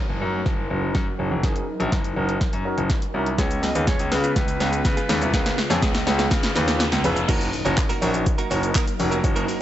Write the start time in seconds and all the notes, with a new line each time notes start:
Already playing: F#3 D#4 A#4 C#5, downlifter, riser
0.09 F#1
0.21 F#2 C#4 D#4 F#4 A#4
0.46 F#1 A#4, kick, snare
0.70 F#1 C#4 D#4 F#4 A#4
0.83 F#4
0.95 F#2, kick, snare
1.19 F#1 C#4 D#4 F#4 G#4 C#5
1.31 F1
1.43 F#1 C#4 D#4 F#4 G#4 A#4, kick, snare, closed hi-hat
1.56 closed hi-hat
1.80 A#1 C#4 D#4 F#4 A#4, closed hi-hat
1.92 F#1, kick, snare, closed hi-hat
2.04 closed hi-hat
2.16 F#1 C#4 D#4 F#4 A#4
2.29 closed hi-hat
2.41 kick, snare, closed hi-hat
2.53 F#2, closed hi-hat
2.65 C#4 D#4 F#4 A#4
2.78 F#1, closed hi-hat
2.90 kick, snare, closed hi-hat
3.02 closed hi-hat
3.14 C2 C#4 D#4 F#4 A#4
3.26 closed hi-hat
3.38 C#2 C#3 G#3 B3 C#4 F4 G#4 B4 C#5, kick, snare, closed hi-hat, shaker
3.51 muted clean electric guitar stroke, closed hi-hat, shaker
3.63 G#3 B3 F4 G#4 D#5, snare, open hi-hat, shaker
3.75 D#2 G#3 B3 C#4 F4 G#4 B4, closed hi-hat, shaker
3.87 G#3 B3 F4 G#4 C#5, kick, snare, closed hi-hat, shaker
3.99 C#2, muted clean electric guitar stroke, closed hi-hat, shaker
4.11 C#3 C#4 F4 G#4 B4, muted clean electric guitar stroke, snare, open hi-hat, shaker
4.24 G#3 B3 F4 G#4, closed hi-hat, shaker
4.36 C#2, kick, snare, closed hi-hat, shaker
4.48 muted clean electric guitar stroke, closed hi-hat, shaker
4.60 C#2 G#3 B3 C#4 F4 G#4 B4, snare, open hi-hat, shaker
4.72 muted clean electric guitar stroke, closed hi-hat, shaker
4.85 C#3, muted clean electric guitar stroke, kick, snare, closed hi-hat, shaker
4.97 G#3 B3 F4 G#4, closed hi-hat, shaker
5.09 D#2 G#3 B3 C#4 F4 G#4 B4, snare, open hi-hat, shaker
5.21 C2, muted clean electric guitar stroke, closed hi-hat, shaker
5.33 C#2 G#3 B3 C#4 F4 G#4 A#4, kick, snare, closed hi-hat, shaker
5.46 snare, closed hi-hat, shaker
5.58 snare, open hi-hat, shaker
5.70 F2 G#3 B3 C#4 F4 G#4 C#5, snare, closed hi-hat, shaker
5.82 C#2 G#3 B3 F4 G#4, kick, snare, closed hi-hat, shaker
5.94 muted clean electric guitar stroke, snare, closed hi-hat, shaker
6.06 C#2 C#4 F4 G#4 B4, muted clean electric guitar stroke, snare, open hi-hat, shaker
6.18 G#3 B3 F4 G#4, snare, closed hi-hat, shaker
6.31 C#3, muted clean electric guitar stroke, kick, snare, closed hi-hat, shaker
6.43 muted clean electric guitar stroke, snare, closed hi-hat, shaker
6.55 D#2 C#4 F4 G#4 B4, snare, open hi-hat, shaker
6.67 muted clean electric guitar stroke, snare, closed hi-hat, shaker
6.80 muted clean electric guitar stroke, snare, closed hi-hat, shaker
6.92 C#2, muted clean electric guitar stroke, snare, closed hi-hat, shaker
7.04 F1 C#4 F4 G#4 B4, open hi-hat, shaker
7.16 muted clean electric guitar stroke, closed hi-hat, shaker
7.28 F#1 F#3 A#3 C#4 D#4 F#4 A#4 C#5, kick, closed hi-hat, crash, impact, shaker
7.41 closed hi-hat, shaker
7.53 open hi-hat, shaker
7.65 F#1 A#3 C#4 D#4 F#4 A#4 C#5, closed hi-hat, shaker
7.77 muted clean electric guitar stroke, kick, clap, closed hi-hat, shaker
7.89 A#3 D#4 F#4 A#4, closed hi-hat, shaker
8.01 A#1 A#3 C#4 D#4 F#4 A#4 C#5, open hi-hat, shaker
8.14 muted clean electric guitar stroke, closed hi-hat, shaker
8.26 muted clean electric guitar stroke, kick, closed hi-hat, shaker
8.38 A#3 D#4 F#4 A#4, closed hi-hat, shaker
8.50 F#1 A#3 C#4 D#4 F#4 A#4 C#5, open hi-hat, shaker
8.63 muted clean electric guitar stroke, closed hi-hat, shaker
8.75 A#3 D#4 F#4 A#4, kick, clap, closed hi-hat, shaker
8.87 muted clean electric guitar stroke, closed hi-hat, shaker
8.99 F1 C#4 D#4 F#4 A#4 C#5, muted clean electric guitar stroke, open hi-hat, shaker
9.11 A#3 D#4 F#4 A#4, closed hi-hat, shaker
9.24 F#1 C#4 D#4 F#4 A#4 C#5, muted clean electric guitar stroke, kick, closed hi-hat, shaker
9.36 A#3 D#4 F#4 A#4, closed hi-hat, shaker
9.48 A#3 D#4 F#4 A#4, open hi-hat, shaker